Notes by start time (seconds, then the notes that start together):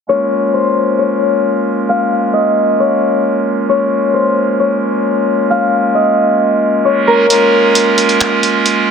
0.08 G#3 A#3 C#4 F4 A#4 C#5
0.54 C5
0.99 C#5
1.89 F5
2.33 D#5
2.80 C#5
3.69 C#5
4.14 C5
4.60 C#5
5.50 F5
5.95 D#5
6.85 C#5
7.07 A#4
7.30 G#3 A#3 C#4 F4 A#4, closed hi-hat
7.75 closed hi-hat
7.98 closed hi-hat
8.09 closed hi-hat
8.20 finger snap, closed hi-hat
8.43 closed hi-hat
8.66 closed hi-hat